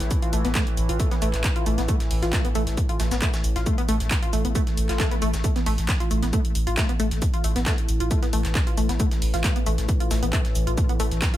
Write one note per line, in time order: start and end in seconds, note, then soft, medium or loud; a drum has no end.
0.00 0.11 A1 medium
0.00 5.43 A2 medium
0.00 5.43 E3 medium
0.00 snare soft
0.00 closed hi-hat soft
0.11 kick loud
0.11 closed hi-hat medium
0.11 shaker medium
0.22 0.31 F4 medium
0.22 closed hi-hat medium
0.33 0.44 A1 loud
0.33 0.43 A3 medium
0.33 open hi-hat loud
0.33 shaker medium
0.45 0.55 A1 medium
0.45 0.48 B3 medium
0.45 snare soft
0.45 closed hi-hat soft
0.55 0.62 A3 loud
0.55 kick loud
0.55 snare loud
0.55 clap loud
0.55 closed hi-hat medium
0.55 shaker medium
0.67 closed hi-hat medium
0.77 0.89 A1 loud
0.77 open hi-hat medium
0.77 shaker medium
0.89 0.99 A1 medium
0.89 0.98 F4 medium
0.89 closed hi-hat medium
1.00 1.09 A3 medium
1.00 kick loud
1.00 closed hi-hat medium
1.00 shaker medium
1.11 1.15 B3 medium
1.11 snare soft
1.11 closed hi-hat soft
1.22 1.33 A1 loud
1.22 1.28 A3 loud
1.22 open hi-hat loud
1.22 shaker medium
1.34 1.44 A1 medium
1.34 snare medium
1.34 clap soft
1.34 closed hi-hat soft
1.44 kick loud
1.44 snare loud
1.44 clap loud
1.44 closed hi-hat medium
1.44 shaker medium
1.56 1.65 F4 medium
1.56 closed hi-hat soft
1.66 1.77 A1 loud
1.66 1.76 A3 medium
1.66 open hi-hat medium
1.66 shaker medium
1.78 1.88 A1 medium
1.78 1.82 B3 medium
1.78 snare medium
1.78 closed hi-hat soft
1.89 1.95 A3 loud
1.89 kick loud
1.89 closed hi-hat medium
1.89 shaker medium
2.00 snare medium
2.00 closed hi-hat medium
2.11 2.22 A1 loud
2.11 open hi-hat loud
2.11 open hi-hat medium
2.22 2.33 A1 medium
2.22 2.31 F4 medium
2.22 snare soft
2.22 closed hi-hat medium
2.33 2.43 A3 medium
2.33 kick loud
2.33 snare loud
2.33 clap loud
2.33 closed hi-hat medium
2.33 shaker medium
2.45 2.48 B3 medium
2.45 closed hi-hat medium
2.55 2.66 A1 loud
2.55 2.62 A3 loud
2.55 open hi-hat medium
2.55 shaker medium
2.67 2.77 A1 medium
2.67 snare medium
2.67 closed hi-hat medium
2.77 kick loud
2.77 closed hi-hat medium
2.77 shaker medium
2.89 2.98 F4 medium
2.89 closed hi-hat medium
3.00 3.11 A1 loud
3.00 3.09 A3 medium
3.00 snare loud
3.00 open hi-hat loud
3.00 shaker medium
3.11 3.22 A1 medium
3.11 3.15 B3 medium
3.11 snare loud
3.11 closed hi-hat medium
3.11 shaker medium
3.22 3.28 A3 loud
3.22 kick loud
3.22 snare loud
3.22 clap loud
3.22 closed hi-hat medium
3.22 shaker medium
3.34 snare loud
3.34 closed hi-hat medium
3.34 shaker medium
3.44 3.55 A1 loud
3.44 open hi-hat medium
3.44 shaker medium
3.56 3.66 A1 medium
3.56 3.65 F4 medium
3.56 snare soft
3.56 closed hi-hat soft
3.66 3.76 A3 medium
3.66 kick loud
3.66 closed hi-hat loud
3.66 shaker medium
3.78 3.82 B3 medium
3.78 closed hi-hat medium
3.89 4.00 A1 loud
3.89 3.95 A3 loud
3.89 open hi-hat loud
3.89 shaker medium
4.00 4.11 A1 medium
4.00 snare soft
4.00 closed hi-hat medium
4.11 kick loud
4.11 snare loud
4.11 clap loud
4.11 closed hi-hat medium
4.11 shaker medium
4.22 4.31 F4 medium
4.22 closed hi-hat medium
4.33 4.44 A1 loud
4.33 4.43 A3 medium
4.33 open hi-hat medium
4.33 shaker medium
4.45 4.55 A1 medium
4.45 4.48 B3 medium
4.45 closed hi-hat medium
4.55 4.62 A3 loud
4.55 kick loud
4.55 closed hi-hat medium
4.55 swell medium
4.55 shaker medium
4.67 snare soft
4.67 closed hi-hat medium
4.77 4.89 A1 loud
4.77 open hi-hat loud
4.77 shaker medium
4.89 4.99 A1 medium
4.89 4.98 F4 medium
4.89 snare medium
4.89 clap soft
4.89 closed hi-hat medium
5.00 5.09 A3 medium
5.00 kick loud
5.00 snare loud
5.00 clap loud
5.00 closed hi-hat loud
5.00 shaker medium
5.11 5.15 B3 medium
5.11 closed hi-hat medium
5.22 5.33 A1 loud
5.22 5.28 A3 loud
5.22 open hi-hat medium
5.22 shaker medium
5.34 5.44 A1 medium
5.34 snare loud
5.34 closed hi-hat medium
5.34 shaker medium
5.44 11.37 A2 medium
5.44 11.37 E3 medium
5.44 5.54 A3 medium
5.44 kick loud
5.44 closed hi-hat loud
5.44 shaker medium
5.56 5.59 B3 medium
5.56 snare medium
5.56 closed hi-hat medium
5.66 5.78 A1 loud
5.66 5.73 A3 loud
5.66 open hi-hat loud
5.66 open hi-hat medium
5.78 5.88 A1 medium
5.78 snare soft
5.78 closed hi-hat medium
5.89 kick loud
5.89 snare loud
5.89 clap loud
5.89 closed hi-hat loud
5.89 shaker medium
6.00 6.09 F4 medium
6.00 closed hi-hat medium
6.11 6.22 A1 loud
6.11 6.21 A3 medium
6.11 open hi-hat medium
6.11 shaker medium
6.22 6.33 A1 medium
6.22 6.26 B3 medium
6.22 snare medium
6.22 closed hi-hat medium
6.33 6.40 A3 loud
6.33 kick loud
6.33 closed hi-hat loud
6.33 shaker medium
6.45 closed hi-hat medium
6.55 6.66 A1 medium
6.55 open hi-hat loud
6.55 shaker medium
6.67 6.77 A1 medium
6.67 6.76 F4 medium
6.67 closed hi-hat medium
6.77 6.87 A3 medium
6.77 kick loud
6.77 snare loud
6.77 clap loud
6.77 closed hi-hat loud
6.77 shaker medium
6.89 6.93 B3 medium
6.89 closed hi-hat medium
7.00 7.11 A1 loud
7.00 7.06 A3 loud
7.00 open hi-hat medium
7.00 shaker medium
7.11 7.22 A1 medium
7.11 snare soft
7.11 closed hi-hat medium
7.22 kick loud
7.22 closed hi-hat loud
7.22 shaker medium
7.34 7.42 F4 medium
7.34 closed hi-hat medium
7.44 7.55 A1 loud
7.44 7.54 A3 medium
7.44 open hi-hat loud
7.44 shaker medium
7.56 7.66 A1 medium
7.56 7.59 B3 medium
7.56 snare soft
7.56 closed hi-hat medium
7.66 7.73 A3 loud
7.66 kick loud
7.66 snare loud
7.66 clap loud
7.66 closed hi-hat loud
7.66 shaker medium
7.78 closed hi-hat medium
7.89 8.00 A1 loud
7.89 open hi-hat loud
7.89 shaker medium
8.00 8.11 A1 medium
8.00 8.09 F4 medium
8.00 closed hi-hat medium
8.11 8.21 A3 medium
8.11 kick loud
8.11 closed hi-hat loud
8.11 shaker medium
8.23 8.26 B3 medium
8.23 snare soft
8.23 closed hi-hat medium
8.33 8.44 A1 medium
8.33 8.40 A3 loud
8.33 open hi-hat loud
8.33 shaker medium
8.45 8.55 A1 medium
8.45 snare medium
8.45 clap soft
8.45 closed hi-hat medium
8.55 kick loud
8.55 snare loud
8.55 clap loud
8.55 closed hi-hat loud
8.55 shaker medium
8.67 8.76 F4 medium
8.67 closed hi-hat medium
8.77 8.89 A1 loud
8.77 8.87 A3 medium
8.77 open hi-hat medium
8.77 shaker medium
8.89 8.99 A1 medium
8.89 8.93 B3 medium
8.89 snare medium
8.89 closed hi-hat medium
9.00 9.06 A3 loud
9.00 kick loud
9.00 closed hi-hat loud
9.00 shaker medium
9.11 snare medium
9.11 closed hi-hat medium
9.22 9.33 A1 loud
9.22 open hi-hat loud
9.22 open hi-hat medium
9.34 9.44 A1 medium
9.34 9.42 F4 medium
9.34 snare soft
9.34 closed hi-hat medium
9.44 9.54 A3 medium
9.44 kick loud
9.44 snare loud
9.44 clap loud
9.44 closed hi-hat loud
9.44 shaker medium
9.56 9.59 B3 medium
9.56 closed hi-hat medium
9.66 9.78 A1 loud
9.66 9.73 A3 loud
9.66 open hi-hat loud
9.66 shaker medium
9.78 9.88 A1 medium
9.78 snare soft
9.78 closed hi-hat medium
9.89 kick loud
9.89 closed hi-hat loud
9.89 shaker medium
10.00 10.09 F4 medium
10.00 closed hi-hat medium
10.11 10.22 A1 loud
10.11 10.21 A3 medium
10.11 snare loud
10.11 open hi-hat loud
10.11 shaker medium
10.23 10.33 A1 medium
10.23 10.26 B3 medium
10.23 closed hi-hat medium
10.33 10.40 A3 loud
10.33 kick loud
10.33 clap loud
10.33 closed hi-hat loud
10.33 shaker medium
10.45 snare soft
10.45 closed hi-hat medium
10.55 10.66 A1 loud
10.55 open hi-hat loud
10.55 shaker medium
10.67 10.77 A1 medium
10.67 10.76 F4 medium
10.67 closed hi-hat medium
10.78 10.87 A3 medium
10.78 kick loud
10.78 closed hi-hat loud
10.78 shaker medium
10.89 10.93 B3 medium
10.89 closed hi-hat medium
11.00 11.11 A1 loud
11.00 11.06 A3 loud
11.00 open hi-hat loud
11.00 shaker medium
11.11 11.22 A1 medium
11.11 snare soft
11.11 closed hi-hat medium
11.22 kick loud
11.22 snare loud
11.22 clap loud
11.22 closed hi-hat medium
11.22 shaker medium
11.34 11.37 F4 medium
11.34 closed hi-hat medium